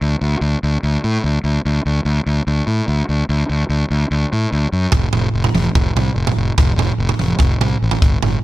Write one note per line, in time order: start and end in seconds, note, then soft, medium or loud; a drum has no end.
0.01 0.15 D2 medium
0.21 0.35 D2 medium
0.41 0.55 D2 medium
0.63 0.76 D2 medium
0.83 0.96 D2 medium
1.04 1.17 A2 medium
1.24 1.37 D2 medium
1.44 1.57 D2 medium
1.65 1.78 D2 medium
1.86 1.99 D2 medium
2.05 2.19 D2 medium
2.26 2.40 D2 medium
2.47 2.60 D2 medium
2.67 2.80 A2 medium
2.88 3.01 D2 medium
3.09 3.22 D2 medium
3.29 3.42 D2 medium
3.50 3.63 D2 medium
3.69 3.83 D2 medium
3.90 4.04 D2 medium
4.11 4.24 D2 medium
4.33 4.46 A2 medium
4.52 4.66 D2 medium
4.72 4.86 F#2 medium
4.92 5.06 F1 medium
4.92 kick loud
4.92 floor tom medium
5.13 5.27 F1 medium
5.13 floor tom medium
5.33 5.47 F1 medium
5.44 floor tom medium
5.53 5.67 F1 medium
5.53 mid tom medium
5.75 5.89 F1 medium
5.75 kick loud
5.75 floor tom medium
5.96 6.09 C2 medium
5.96 floor tom medium
6.16 6.29 F1 medium
6.27 floor tom medium
6.36 6.50 F1 medium
6.58 6.71 F1 medium
6.58 kick loud
6.58 floor tom medium
6.76 6.90 F1 medium
6.76 floor tom medium
6.98 7.12 F1 medium
7.09 floor tom medium
7.19 7.33 F1 medium
7.19 mid tom medium
7.39 7.53 F1 medium
7.39 kick loud
7.39 floor tom medium
7.61 7.74 C2 medium
7.61 floor tom medium
7.82 7.95 A1 medium
7.91 floor tom medium
8.02 8.15 G1 medium
8.02 kick loud
8.22 8.36 G1 medium
8.22 floor tom medium